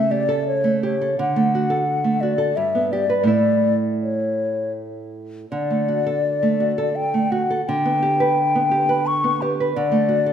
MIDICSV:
0, 0, Header, 1, 3, 480
1, 0, Start_track
1, 0, Key_signature, 2, "major"
1, 0, Tempo, 703400
1, 816, Time_signature, 3, 2, 24, 8
1, 2241, Tempo, 741656
1, 3681, Tempo, 719424
1, 4641, Tempo, 695249
1, 6975, End_track
2, 0, Start_track
2, 0, Title_t, "Flute"
2, 0, Program_c, 0, 73
2, 0, Note_on_c, 0, 76, 60
2, 76, Note_on_c, 0, 74, 55
2, 86, Note_off_c, 0, 76, 0
2, 317, Note_off_c, 0, 74, 0
2, 323, Note_on_c, 0, 73, 54
2, 564, Note_off_c, 0, 73, 0
2, 572, Note_on_c, 0, 73, 47
2, 813, Note_off_c, 0, 73, 0
2, 820, Note_on_c, 0, 78, 58
2, 1506, Note_on_c, 0, 74, 49
2, 1516, Note_off_c, 0, 78, 0
2, 1748, Note_on_c, 0, 76, 58
2, 1758, Note_off_c, 0, 74, 0
2, 1989, Note_on_c, 0, 74, 48
2, 2000, Note_off_c, 0, 76, 0
2, 2233, Note_off_c, 0, 74, 0
2, 2237, Note_on_c, 0, 74, 52
2, 2545, Note_off_c, 0, 74, 0
2, 2723, Note_on_c, 0, 73, 38
2, 3173, Note_off_c, 0, 73, 0
2, 3686, Note_on_c, 0, 74, 53
2, 4646, Note_on_c, 0, 79, 57
2, 4656, Note_off_c, 0, 74, 0
2, 4887, Note_on_c, 0, 78, 49
2, 4897, Note_off_c, 0, 79, 0
2, 5125, Note_off_c, 0, 78, 0
2, 5129, Note_on_c, 0, 79, 67
2, 6102, Note_on_c, 0, 85, 72
2, 6113, Note_off_c, 0, 79, 0
2, 6346, Note_on_c, 0, 71, 45
2, 6356, Note_off_c, 0, 85, 0
2, 6570, Note_off_c, 0, 71, 0
2, 6574, Note_on_c, 0, 74, 61
2, 6975, Note_off_c, 0, 74, 0
2, 6975, End_track
3, 0, Start_track
3, 0, Title_t, "Nylon-string guitar"
3, 0, Program_c, 1, 24
3, 0, Note_on_c, 1, 49, 45
3, 0, Note_on_c, 1, 57, 34
3, 0, Note_on_c, 1, 69, 42
3, 76, Note_on_c, 1, 67, 35
3, 104, Note_off_c, 1, 69, 0
3, 151, Note_off_c, 1, 57, 0
3, 195, Note_on_c, 1, 69, 42
3, 269, Note_off_c, 1, 67, 0
3, 436, Note_on_c, 1, 57, 38
3, 567, Note_on_c, 1, 67, 44
3, 591, Note_off_c, 1, 69, 0
3, 641, Note_off_c, 1, 57, 0
3, 692, Note_on_c, 1, 69, 36
3, 767, Note_off_c, 1, 67, 0
3, 788, Note_off_c, 1, 49, 0
3, 813, Note_on_c, 1, 50, 52
3, 815, Note_off_c, 1, 69, 0
3, 930, Note_on_c, 1, 57, 39
3, 1056, Note_on_c, 1, 66, 40
3, 1119, Note_off_c, 1, 57, 0
3, 1160, Note_on_c, 1, 69, 42
3, 1240, Note_off_c, 1, 66, 0
3, 1394, Note_on_c, 1, 57, 33
3, 1520, Note_on_c, 1, 66, 34
3, 1536, Note_off_c, 1, 69, 0
3, 1584, Note_off_c, 1, 57, 0
3, 1625, Note_on_c, 1, 69, 38
3, 1707, Note_off_c, 1, 66, 0
3, 1725, Note_off_c, 1, 50, 0
3, 1749, Note_off_c, 1, 69, 0
3, 1753, Note_on_c, 1, 43, 42
3, 1876, Note_on_c, 1, 59, 32
3, 1997, Note_on_c, 1, 67, 41
3, 2069, Note_off_c, 1, 59, 0
3, 2109, Note_off_c, 1, 67, 0
3, 2112, Note_on_c, 1, 71, 34
3, 2207, Note_on_c, 1, 45, 42
3, 2217, Note_on_c, 1, 57, 28
3, 2226, Note_off_c, 1, 43, 0
3, 2230, Note_off_c, 1, 71, 0
3, 2233, Note_on_c, 1, 64, 30
3, 3640, Note_off_c, 1, 45, 0
3, 3644, Note_off_c, 1, 57, 0
3, 3652, Note_off_c, 1, 64, 0
3, 3686, Note_on_c, 1, 50, 43
3, 3812, Note_on_c, 1, 57, 33
3, 3931, Note_on_c, 1, 66, 37
3, 4001, Note_off_c, 1, 57, 0
3, 4052, Note_on_c, 1, 69, 39
3, 4120, Note_off_c, 1, 66, 0
3, 4293, Note_on_c, 1, 57, 31
3, 4410, Note_on_c, 1, 66, 32
3, 4430, Note_off_c, 1, 69, 0
3, 4479, Note_off_c, 1, 57, 0
3, 4529, Note_on_c, 1, 69, 38
3, 4597, Note_off_c, 1, 66, 0
3, 4773, Note_on_c, 1, 57, 33
3, 4897, Note_on_c, 1, 66, 42
3, 4913, Note_off_c, 1, 69, 0
3, 4963, Note_off_c, 1, 57, 0
3, 5025, Note_on_c, 1, 69, 41
3, 5085, Note_off_c, 1, 66, 0
3, 5103, Note_off_c, 1, 50, 0
3, 5137, Note_off_c, 1, 69, 0
3, 5151, Note_on_c, 1, 50, 56
3, 5266, Note_on_c, 1, 59, 40
3, 5384, Note_on_c, 1, 67, 45
3, 5451, Note_off_c, 1, 59, 0
3, 5506, Note_on_c, 1, 71, 45
3, 5570, Note_off_c, 1, 67, 0
3, 5749, Note_on_c, 1, 59, 35
3, 5860, Note_on_c, 1, 67, 39
3, 5885, Note_off_c, 1, 71, 0
3, 5934, Note_off_c, 1, 59, 0
3, 5981, Note_on_c, 1, 71, 42
3, 6052, Note_off_c, 1, 67, 0
3, 6222, Note_on_c, 1, 59, 39
3, 6347, Note_on_c, 1, 67, 40
3, 6367, Note_off_c, 1, 71, 0
3, 6413, Note_off_c, 1, 59, 0
3, 6474, Note_on_c, 1, 71, 38
3, 6532, Note_off_c, 1, 67, 0
3, 6558, Note_off_c, 1, 50, 0
3, 6583, Note_off_c, 1, 71, 0
3, 6585, Note_on_c, 1, 50, 55
3, 6690, Note_on_c, 1, 57, 38
3, 6808, Note_on_c, 1, 66, 40
3, 6876, Note_off_c, 1, 57, 0
3, 6930, Note_on_c, 1, 69, 41
3, 6975, Note_off_c, 1, 50, 0
3, 6975, Note_off_c, 1, 66, 0
3, 6975, Note_off_c, 1, 69, 0
3, 6975, End_track
0, 0, End_of_file